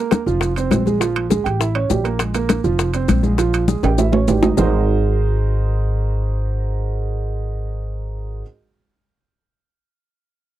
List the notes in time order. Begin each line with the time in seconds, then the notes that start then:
Already playing: A#3 A#4
0.11 high bongo, high conga, high timbale, maracas
0.26 F1 F3 F4, high bongo, high conga, maracas
0.41 high bongo, high conga, high timbale, maracas
0.56 C4 C5, high conga, high timbale, maracas
0.71 A#1, high bongo, low bongo, high conga, high timbale, low timbale, maracas
0.86 G#3 G#4, high bongo, high conga, maracas
1.00 F3 F4, high bongo, high timbale, maracas
1.16 high bongo, high conga, high timbale
1.30 G#3 G#4, high bongo, high conga, maracas
1.44 A1 G4 G5, high bongo, high conga, high timbale, maracas
1.60 E4 E5, high bongo, high conga, maracas
1.75 C#4 C#5, high conga, high timbale
1.89 A#1 G3 G4, high bongo, low bongo, high conga, low timbale, maracas
2.04 A#3 A#4, high bongo, high timbale, maracas
2.19 G#3 G#4, high bongo, high conga, high timbale, maracas
2.34 A#3 A#4, high bongo, high conga, high timbale, maracas
2.49 high bongo, high conga, high timbale, maracas
2.64 F1 F3 F4, high bongo, high conga, maracas
2.79 high bongo, high conga, high timbale, maracas
2.94 C4 C5, high conga, high timbale, maracas
3.08 A#1, high bongo, low bongo, high conga, high timbale, maracas
3.23 G#3 G#4, high bongo, high conga, maracas
3.38 F3 F4, high bongo, high conga, high timbale, maracas
3.53 high conga, high timbale, maracas
3.68 G#3 G#4, high conga, maracas
3.83 A1 G4 G5, low bongo, high conga, high timbale, maracas
3.97 E4 E5, low bongo, high conga, low timbale, maracas
4.12 C#4 C#5, low bongo, high conga, low timbale
4.28 G#1 G3 G4, high conga, low timbale, maracas
4.43 D#4 D#5, low bongo, high conga, low timbale, maracas
4.57 G#1 G#3 D#4 F#4 G#4 A#4 C5, low bongo, low conga, low timbale, maracas